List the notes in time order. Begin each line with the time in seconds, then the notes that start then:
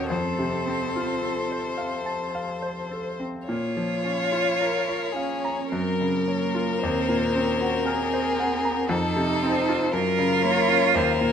Already playing: D#2 A#2 C#4 F#4
0.09 F2 C4 A4 C5
0.39 C3
0.67 C4
0.96 F4
1.23 A4
1.51 C5
1.78 F5
2.06 A5
2.35 F5
2.62 C5
2.91 A4
3.20 C4
3.47 A#2 F4 C#5
3.77 F3
4.04 C#4
4.32 F4
4.57 A#4
4.88 C#5
5.12 C#4 G#4
5.16 F5
5.45 A#5
5.69 F#2 C4 A#4
6.01 C#3
6.25 A#3 C#4
6.55 F4
6.79 C4 C5
6.83 D#2
7.09 A#2
7.35 C4 C#4
7.61 F#4
7.85 C4 G#4 A#4
8.13 C5
8.40 F#5
8.65 A#5
8.88 F2 D#4 A4
9.16 C3
9.41 C4 C5
9.69 F4
9.92 F#2 F4 A#4
10.19 C#3
10.44 A#3 C#5
10.70 C#4
10.94 D#2 A#4 C5
11.21 A#2